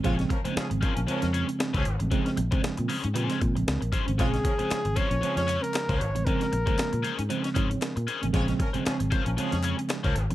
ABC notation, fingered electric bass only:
X:1
M:4/4
L:1/16
Q:"Swing 16ths" 1/4=116
K:Bbm
V:1 name="Fingered electric bass" clef=bass
B,,,2 z3 A,,, z B,,, z F,,2 z2 D,, A,,, =A,,, | z2 B,,, z2 B,, z A,, B,, z B,, B,,, D,, B,,, z A,,, | B,,,2 z3 A,,, z B,,, z F,,2 z2 D,, A,,, =A,,, | z2 B,,, z2 B,, z A,, z2 A,,2 z B,, z =A,,, |
B,,,2 z3 A,,, z B,,, z F,,2 z2 D,, A,,, =A,,, |]